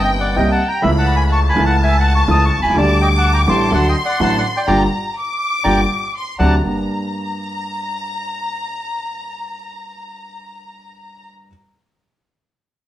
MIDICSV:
0, 0, Header, 1, 5, 480
1, 0, Start_track
1, 0, Key_signature, -2, "minor"
1, 0, Tempo, 479616
1, 843, Time_signature, 4, 2, 24, 8
1, 4681, Tempo, 486224
1, 12773, End_track
2, 0, Start_track
2, 0, Title_t, "Violin section"
2, 0, Program_c, 0, 48
2, 0, Note_on_c, 0, 79, 93
2, 803, Note_off_c, 0, 79, 0
2, 834, Note_on_c, 0, 83, 96
2, 1286, Note_off_c, 0, 83, 0
2, 1313, Note_on_c, 0, 81, 103
2, 2755, Note_on_c, 0, 86, 116
2, 2757, Note_off_c, 0, 81, 0
2, 3716, Note_off_c, 0, 86, 0
2, 3722, Note_on_c, 0, 84, 112
2, 4683, Note_off_c, 0, 84, 0
2, 4697, Note_on_c, 0, 82, 90
2, 5168, Note_off_c, 0, 82, 0
2, 5172, Note_on_c, 0, 86, 104
2, 6100, Note_off_c, 0, 86, 0
2, 6149, Note_on_c, 0, 84, 84
2, 6370, Note_off_c, 0, 84, 0
2, 6391, Note_on_c, 0, 82, 63
2, 6611, Note_off_c, 0, 82, 0
2, 6643, Note_on_c, 0, 82, 81
2, 11201, Note_off_c, 0, 82, 0
2, 12773, End_track
3, 0, Start_track
3, 0, Title_t, "Bandoneon"
3, 0, Program_c, 1, 23
3, 40, Note_on_c, 1, 79, 80
3, 44, Note_on_c, 1, 75, 58
3, 113, Note_off_c, 1, 79, 0
3, 116, Note_off_c, 1, 75, 0
3, 199, Note_on_c, 1, 78, 80
3, 207, Note_on_c, 1, 74, 64
3, 350, Note_off_c, 1, 78, 0
3, 355, Note_off_c, 1, 74, 0
3, 361, Note_on_c, 1, 79, 84
3, 370, Note_on_c, 1, 75, 68
3, 511, Note_off_c, 1, 79, 0
3, 516, Note_off_c, 1, 75, 0
3, 518, Note_on_c, 1, 81, 82
3, 524, Note_on_c, 1, 78, 65
3, 672, Note_off_c, 1, 78, 0
3, 682, Note_on_c, 1, 82, 85
3, 685, Note_off_c, 1, 81, 0
3, 685, Note_on_c, 1, 79, 68
3, 821, Note_on_c, 1, 83, 88
3, 830, Note_on_c, 1, 76, 74
3, 831, Note_off_c, 1, 82, 0
3, 832, Note_off_c, 1, 79, 0
3, 898, Note_off_c, 1, 83, 0
3, 904, Note_off_c, 1, 76, 0
3, 982, Note_on_c, 1, 81, 85
3, 987, Note_on_c, 1, 78, 62
3, 1143, Note_off_c, 1, 78, 0
3, 1153, Note_on_c, 1, 83, 85
3, 1157, Note_off_c, 1, 81, 0
3, 1167, Note_on_c, 1, 80, 63
3, 1228, Note_off_c, 1, 83, 0
3, 1239, Note_off_c, 1, 80, 0
3, 1323, Note_on_c, 1, 85, 94
3, 1326, Note_on_c, 1, 81, 73
3, 1397, Note_off_c, 1, 85, 0
3, 1399, Note_off_c, 1, 81, 0
3, 1492, Note_on_c, 1, 83, 86
3, 1499, Note_on_c, 1, 80, 72
3, 1639, Note_off_c, 1, 83, 0
3, 1643, Note_off_c, 1, 80, 0
3, 1657, Note_on_c, 1, 81, 94
3, 1664, Note_on_c, 1, 78, 75
3, 1766, Note_off_c, 1, 81, 0
3, 1768, Note_off_c, 1, 78, 0
3, 1781, Note_on_c, 1, 81, 73
3, 1814, Note_off_c, 1, 81, 0
3, 1833, Note_on_c, 1, 80, 96
3, 1838, Note_on_c, 1, 76, 78
3, 1972, Note_off_c, 1, 76, 0
3, 1984, Note_off_c, 1, 80, 0
3, 1998, Note_on_c, 1, 81, 91
3, 2002, Note_on_c, 1, 78, 69
3, 2131, Note_off_c, 1, 81, 0
3, 2133, Note_off_c, 1, 78, 0
3, 2152, Note_on_c, 1, 85, 101
3, 2167, Note_on_c, 1, 81, 76
3, 2218, Note_off_c, 1, 85, 0
3, 2229, Note_off_c, 1, 81, 0
3, 2311, Note_on_c, 1, 87, 108
3, 2317, Note_on_c, 1, 81, 80
3, 2446, Note_off_c, 1, 87, 0
3, 2450, Note_off_c, 1, 81, 0
3, 2458, Note_on_c, 1, 85, 101
3, 2470, Note_on_c, 1, 81, 76
3, 2600, Note_off_c, 1, 85, 0
3, 2606, Note_off_c, 1, 81, 0
3, 2624, Note_on_c, 1, 83, 96
3, 2633, Note_on_c, 1, 80, 74
3, 2763, Note_off_c, 1, 83, 0
3, 2768, Note_off_c, 1, 80, 0
3, 2782, Note_on_c, 1, 81, 100
3, 2786, Note_on_c, 1, 74, 72
3, 2996, Note_off_c, 1, 81, 0
3, 2998, Note_off_c, 1, 74, 0
3, 3017, Note_on_c, 1, 79, 78
3, 3024, Note_on_c, 1, 75, 64
3, 3085, Note_off_c, 1, 79, 0
3, 3091, Note_off_c, 1, 75, 0
3, 3180, Note_on_c, 1, 81, 88
3, 3181, Note_on_c, 1, 78, 71
3, 3320, Note_off_c, 1, 78, 0
3, 3335, Note_off_c, 1, 81, 0
3, 3338, Note_on_c, 1, 82, 83
3, 3344, Note_on_c, 1, 79, 67
3, 3406, Note_off_c, 1, 82, 0
3, 3411, Note_off_c, 1, 79, 0
3, 3495, Note_on_c, 1, 84, 90
3, 3498, Note_on_c, 1, 81, 72
3, 3711, Note_off_c, 1, 84, 0
3, 3712, Note_off_c, 1, 81, 0
3, 3736, Note_on_c, 1, 81, 91
3, 3744, Note_on_c, 1, 78, 69
3, 3878, Note_off_c, 1, 81, 0
3, 3882, Note_off_c, 1, 78, 0
3, 3892, Note_on_c, 1, 79, 77
3, 3897, Note_on_c, 1, 75, 59
3, 3961, Note_off_c, 1, 79, 0
3, 3965, Note_off_c, 1, 75, 0
3, 4055, Note_on_c, 1, 78, 79
3, 4059, Note_on_c, 1, 74, 68
3, 4199, Note_off_c, 1, 74, 0
3, 4212, Note_off_c, 1, 78, 0
3, 4225, Note_on_c, 1, 81, 88
3, 4230, Note_on_c, 1, 78, 70
3, 4365, Note_off_c, 1, 78, 0
3, 4377, Note_off_c, 1, 81, 0
3, 4383, Note_on_c, 1, 74, 64
3, 4387, Note_on_c, 1, 78, 79
3, 4468, Note_off_c, 1, 74, 0
3, 4471, Note_off_c, 1, 78, 0
3, 4570, Note_on_c, 1, 79, 73
3, 4576, Note_on_c, 1, 74, 54
3, 4663, Note_off_c, 1, 79, 0
3, 4670, Note_off_c, 1, 74, 0
3, 4678, Note_on_c, 1, 79, 95
3, 4681, Note_on_c, 1, 82, 91
3, 4685, Note_on_c, 1, 74, 97
3, 4833, Note_off_c, 1, 79, 0
3, 4834, Note_off_c, 1, 82, 0
3, 4837, Note_off_c, 1, 74, 0
3, 5633, Note_on_c, 1, 79, 86
3, 5634, Note_on_c, 1, 74, 87
3, 5635, Note_on_c, 1, 82, 85
3, 5794, Note_off_c, 1, 74, 0
3, 5794, Note_off_c, 1, 79, 0
3, 5794, Note_off_c, 1, 82, 0
3, 6372, Note_on_c, 1, 78, 83
3, 6373, Note_on_c, 1, 74, 87
3, 6373, Note_on_c, 1, 81, 88
3, 6530, Note_off_c, 1, 78, 0
3, 6531, Note_off_c, 1, 74, 0
3, 6531, Note_off_c, 1, 81, 0
3, 12773, End_track
4, 0, Start_track
4, 0, Title_t, "Upright piano"
4, 0, Program_c, 2, 0
4, 0, Note_on_c, 2, 31, 84
4, 0, Note_on_c, 2, 43, 85
4, 0, Note_on_c, 2, 48, 65
4, 0, Note_on_c, 2, 55, 60
4, 0, Note_on_c, 2, 58, 60
4, 0, Note_on_c, 2, 63, 80
4, 317, Note_off_c, 2, 48, 0
4, 323, Note_off_c, 2, 55, 0
4, 326, Note_off_c, 2, 43, 0
4, 327, Note_off_c, 2, 31, 0
4, 331, Note_off_c, 2, 58, 0
4, 337, Note_off_c, 2, 63, 0
4, 360, Note_on_c, 2, 55, 69
4, 361, Note_on_c, 2, 48, 82
4, 364, Note_on_c, 2, 36, 87
4, 366, Note_on_c, 2, 58, 67
4, 366, Note_on_c, 2, 63, 79
4, 563, Note_off_c, 2, 55, 0
4, 565, Note_off_c, 2, 36, 0
4, 566, Note_off_c, 2, 48, 0
4, 566, Note_off_c, 2, 58, 0
4, 567, Note_off_c, 2, 63, 0
4, 821, Note_on_c, 2, 49, 92
4, 829, Note_on_c, 2, 52, 68
4, 839, Note_on_c, 2, 37, 91
4, 845, Note_on_c, 2, 57, 67
4, 859, Note_on_c, 2, 64, 79
4, 1524, Note_off_c, 2, 52, 0
4, 1529, Note_off_c, 2, 37, 0
4, 1529, Note_off_c, 2, 49, 0
4, 1532, Note_off_c, 2, 57, 0
4, 1539, Note_off_c, 2, 64, 0
4, 1546, Note_on_c, 2, 49, 76
4, 1558, Note_on_c, 2, 52, 70
4, 1561, Note_off_c, 2, 49, 0
4, 1564, Note_on_c, 2, 37, 84
4, 1567, Note_on_c, 2, 49, 89
4, 1571, Note_on_c, 2, 57, 65
4, 1584, Note_on_c, 2, 64, 82
4, 2244, Note_off_c, 2, 52, 0
4, 2247, Note_off_c, 2, 37, 0
4, 2249, Note_off_c, 2, 49, 0
4, 2251, Note_off_c, 2, 57, 0
4, 2257, Note_off_c, 2, 64, 0
4, 2279, Note_on_c, 2, 49, 89
4, 2282, Note_on_c, 2, 52, 69
4, 2283, Note_on_c, 2, 37, 83
4, 2283, Note_on_c, 2, 57, 69
4, 2285, Note_on_c, 2, 64, 83
4, 2483, Note_off_c, 2, 49, 0
4, 2484, Note_off_c, 2, 37, 0
4, 2484, Note_off_c, 2, 52, 0
4, 2484, Note_off_c, 2, 57, 0
4, 2485, Note_off_c, 2, 64, 0
4, 2581, Note_on_c, 2, 35, 50
4, 2642, Note_off_c, 2, 35, 0
4, 2649, Note_on_c, 2, 36, 66
4, 2704, Note_on_c, 2, 37, 74
4, 2706, Note_off_c, 2, 36, 0
4, 2747, Note_on_c, 2, 50, 91
4, 2758, Note_on_c, 2, 55, 73
4, 2763, Note_off_c, 2, 37, 0
4, 2768, Note_on_c, 2, 38, 88
4, 2769, Note_on_c, 2, 57, 73
4, 2785, Note_on_c, 2, 67, 89
4, 3442, Note_off_c, 2, 55, 0
4, 3446, Note_off_c, 2, 50, 0
4, 3447, Note_off_c, 2, 38, 0
4, 3447, Note_off_c, 2, 57, 0
4, 3455, Note_off_c, 2, 67, 0
4, 3473, Note_on_c, 2, 50, 78
4, 3476, Note_on_c, 2, 33, 82
4, 3476, Note_on_c, 2, 45, 88
4, 3477, Note_on_c, 2, 55, 67
4, 3478, Note_on_c, 2, 57, 62
4, 3478, Note_on_c, 2, 67, 79
4, 3678, Note_off_c, 2, 50, 0
4, 3680, Note_off_c, 2, 33, 0
4, 3680, Note_off_c, 2, 45, 0
4, 3680, Note_off_c, 2, 55, 0
4, 3680, Note_off_c, 2, 57, 0
4, 3680, Note_off_c, 2, 67, 0
4, 3711, Note_on_c, 2, 54, 61
4, 3712, Note_on_c, 2, 50, 85
4, 3714, Note_on_c, 2, 57, 65
4, 3716, Note_on_c, 2, 38, 83
4, 3718, Note_on_c, 2, 66, 76
4, 3917, Note_off_c, 2, 54, 0
4, 3918, Note_off_c, 2, 50, 0
4, 3919, Note_off_c, 2, 38, 0
4, 3919, Note_off_c, 2, 57, 0
4, 3920, Note_off_c, 2, 66, 0
4, 4200, Note_on_c, 2, 54, 68
4, 4201, Note_on_c, 2, 50, 77
4, 4203, Note_on_c, 2, 57, 67
4, 4205, Note_on_c, 2, 45, 87
4, 4206, Note_on_c, 2, 66, 76
4, 4207, Note_on_c, 2, 33, 87
4, 4402, Note_off_c, 2, 50, 0
4, 4402, Note_off_c, 2, 54, 0
4, 4404, Note_off_c, 2, 45, 0
4, 4404, Note_off_c, 2, 57, 0
4, 4405, Note_off_c, 2, 33, 0
4, 4405, Note_off_c, 2, 66, 0
4, 4678, Note_on_c, 2, 50, 92
4, 4681, Note_on_c, 2, 46, 93
4, 4681, Note_on_c, 2, 55, 92
4, 4833, Note_off_c, 2, 50, 0
4, 4834, Note_off_c, 2, 46, 0
4, 4834, Note_off_c, 2, 55, 0
4, 5636, Note_on_c, 2, 55, 87
4, 5640, Note_on_c, 2, 46, 88
4, 5641, Note_on_c, 2, 50, 82
4, 5795, Note_off_c, 2, 55, 0
4, 5798, Note_off_c, 2, 46, 0
4, 5798, Note_off_c, 2, 50, 0
4, 6378, Note_on_c, 2, 54, 85
4, 6379, Note_on_c, 2, 48, 83
4, 6383, Note_on_c, 2, 50, 78
4, 6534, Note_off_c, 2, 48, 0
4, 6534, Note_off_c, 2, 54, 0
4, 6537, Note_off_c, 2, 50, 0
4, 6614, Note_on_c, 2, 62, 51
4, 6615, Note_on_c, 2, 43, 54
4, 6616, Note_on_c, 2, 58, 52
4, 6616, Note_on_c, 2, 67, 56
4, 11383, Note_off_c, 2, 62, 0
4, 11384, Note_off_c, 2, 43, 0
4, 11385, Note_off_c, 2, 58, 0
4, 11385, Note_off_c, 2, 67, 0
4, 12773, End_track
5, 0, Start_track
5, 0, Title_t, "Upright bass"
5, 0, Program_c, 3, 32
5, 0, Note_on_c, 3, 31, 94
5, 327, Note_off_c, 3, 31, 0
5, 366, Note_on_c, 3, 36, 91
5, 566, Note_off_c, 3, 36, 0
5, 842, Note_on_c, 3, 37, 102
5, 1530, Note_off_c, 3, 37, 0
5, 1563, Note_on_c, 3, 37, 97
5, 2246, Note_off_c, 3, 37, 0
5, 2277, Note_on_c, 3, 37, 101
5, 2481, Note_off_c, 3, 37, 0
5, 2585, Note_on_c, 3, 35, 57
5, 2638, Note_off_c, 3, 35, 0
5, 2644, Note_on_c, 3, 36, 68
5, 2697, Note_off_c, 3, 36, 0
5, 2703, Note_on_c, 3, 37, 85
5, 2757, Note_off_c, 3, 37, 0
5, 2763, Note_on_c, 3, 38, 103
5, 3444, Note_off_c, 3, 38, 0
5, 3480, Note_on_c, 3, 33, 101
5, 3681, Note_off_c, 3, 33, 0
5, 3721, Note_on_c, 3, 38, 96
5, 3922, Note_off_c, 3, 38, 0
5, 4203, Note_on_c, 3, 33, 96
5, 4403, Note_off_c, 3, 33, 0
5, 4682, Note_on_c, 3, 31, 99
5, 4860, Note_off_c, 3, 31, 0
5, 5641, Note_on_c, 3, 31, 89
5, 5824, Note_off_c, 3, 31, 0
5, 6377, Note_on_c, 3, 38, 89
5, 6559, Note_off_c, 3, 38, 0
5, 6619, Note_on_c, 3, 31, 56
5, 6821, Note_off_c, 3, 31, 0
5, 12773, End_track
0, 0, End_of_file